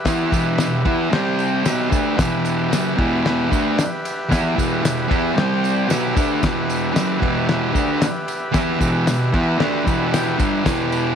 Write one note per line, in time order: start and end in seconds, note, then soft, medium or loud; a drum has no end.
0.00 1.08 G4 medium
0.00 1.09 B4 medium
0.00 1.09 E5 medium
0.05 0.31 E3 medium
0.05 0.32 B3 medium
0.05 0.32 E4 loud
0.05 kick loud
0.05 snare loud
0.05 ride medium
0.05 tambourine medium
0.31 0.57 E2 medium
0.31 0.58 B2 medium
0.31 0.58 E3 medium
0.31 kick loud
0.31 ride medium
0.31 tambourine medium
0.58 0.80 E2 medium
0.58 0.80 B2 medium
0.58 snare loud
0.58 ride loud
0.58 tambourine loud
0.85 1.10 E3 medium
0.85 1.11 B3 medium
0.85 1.12 E4 loud
0.85 kick loud
0.85 ride medium
1.11 1.64 C3 loud
1.11 1.64 G3 medium
1.11 1.65 C4 loud
1.11 1.62 G4 medium
1.11 1.66 C5 medium
1.11 1.66 G5 medium
1.11 snare loud
1.11 ride loud
1.11 tambourine soft
1.39 ride medium
1.39 tambourine medium
1.63 1.90 B2 medium
1.63 1.91 F#3 medium
1.63 1.91 B3 medium
1.63 5.32 G4 medium
1.63 5.33 B4 medium
1.63 5.34 E5 medium
1.63 snare loud
1.63 ride medium
1.63 tambourine loud
1.90 2.17 D3 medium
1.90 2.17 A3 loud
1.90 2.18 D4 medium
1.90 kick loud
1.90 ride medium
1.90 tambourine medium
2.17 2.69 E2 medium
2.17 2.70 B2 medium
2.17 2.71 E3 loud
2.17 kick loud
2.17 snare loud
2.17 ride medium
2.17 tambourine medium
2.45 ride medium
2.45 tambourine medium
2.70 2.96 F#2 medium
2.70 2.97 C#3 medium
2.70 2.97 F#3 loud
2.70 snare loud
2.70 ride medium
2.70 tambourine loud
2.96 3.50 E2 medium
2.96 3.49 B2 medium
2.96 3.50 E3 medium
2.96 kick medium
2.96 ride medium
3.25 snare loud
3.25 ride medium
3.25 tambourine soft
3.49 3.76 D3 medium
3.49 3.76 A3 medium
3.49 3.77 D4 loud
3.49 kick loud
3.49 ride medium
3.49 tambourine medium
3.78 snare loud
3.78 ride medium
3.78 tambourine loud
4.05 ride medium
4.05 tambourine medium
4.29 4.56 E3 medium
4.29 4.56 B3 medium
4.29 4.57 E4 medium
4.29 kick loud
4.29 snare loud
4.29 ride loud
4.29 tambourine medium
4.56 4.81 E2 medium
4.56 4.82 B2 medium
4.56 4.83 E3 loud
4.56 kick medium
4.56 ride medium
4.56 tambourine medium
4.83 5.04 E2 medium
4.83 5.05 B2 medium
4.83 snare loud
4.83 ride loud
4.83 tambourine loud
5.08 5.34 E3 medium
5.08 5.35 B3 loud
5.08 5.36 E4 medium
5.08 kick loud
5.08 ride medium
5.08 tambourine soft
5.35 5.88 C3 medium
5.35 5.88 G3 loud
5.35 5.89 C4 medium
5.35 5.85 G4 medium
5.35 5.89 C5 medium
5.35 5.90 G5 medium
5.35 snare loud
5.35 ride loud
5.39 tambourine soft
5.64 ride medium
5.64 tambourine medium
5.86 6.15 B2 medium
5.86 6.15 F#3 medium
5.86 6.15 B3 medium
5.86 10.07 G4 medium
5.86 10.08 B4 medium
5.90 10.09 E5 medium
5.90 snare loud
5.90 ride loud
5.90 tambourine loud
6.15 6.41 D3 medium
6.15 6.42 A3 medium
6.15 6.42 D4 loud
6.15 kick loud
6.15 ride medium
6.15 tambourine medium
6.41 6.93 E2 loud
6.41 6.94 B2 medium
6.41 6.95 E3 medium
6.41 kick loud
6.41 snare loud
6.41 ride loud
6.41 tambourine medium
6.69 ride medium
6.69 tambourine medium
6.93 7.19 F#2 medium
6.93 7.20 C#3 medium
6.93 7.21 F#3 loud
6.93 snare loud
6.93 ride medium
6.93 tambourine loud
7.20 7.73 E2 medium
7.20 7.72 B2 loud
7.20 7.73 E3 loud
7.20 kick loud
7.20 ride medium
7.49 snare loud
7.49 ride medium
7.49 tambourine soft
7.73 7.99 D3 loud
7.73 8.00 A3 medium
7.73 8.00 D4 loud
7.73 kick loud
7.73 ride medium
7.73 tambourine medium
8.01 snare loud
8.01 ride medium
8.01 tambourine medium
8.28 ride medium
8.28 tambourine medium
8.52 8.79 E3 medium
8.52 8.80 B3 medium
8.52 8.80 E4 medium
8.52 kick loud
8.52 snare loud
8.52 ride loud
8.52 tambourine medium
8.79 9.05 E2 medium
8.79 9.05 B2 medium
8.79 9.06 E3 loud
8.79 kick loud
8.79 ride medium
8.79 tambourine medium
9.06 9.28 E2 medium
9.06 9.28 B2 medium
9.06 snare loud
9.06 ride medium
9.06 tambourine loud
9.32 9.58 E3 medium
9.32 9.59 B3 medium
9.32 9.59 E4 medium
9.32 kick loud
9.32 ride medium
9.58 9.85 D3 medium
9.58 9.85 A3 loud
9.58 9.86 D4 loud
9.58 snare loud
9.58 ride medium
9.58 tambourine soft
9.85 10.38 E2 loud
9.85 10.38 B2 loud
9.85 10.39 E3 loud
9.85 10.10 B5 medium
9.85 kick loud
9.85 ride medium
9.85 tambourine medium
10.11 11.15 G4 medium
10.11 11.15 B4 medium
10.11 10.39 E5 medium
10.11 10.38 G5 medium
10.11 snare loud
10.11 ride loud
10.11 tambourine loud
10.38 10.64 G2 medium
10.38 10.65 D3 loud
10.38 10.65 G3 medium
10.38 10.64 E5 medium
10.38 kick loud
10.38 ride medium
10.38 tambourine medium
10.64 11.15 E2 medium
10.64 11.15 B2 loud
10.64 11.15 E3 medium
10.64 kick loud
10.64 snare loud
10.64 ride medium
10.64 tambourine medium
10.92 ride medium
10.92 tambourine medium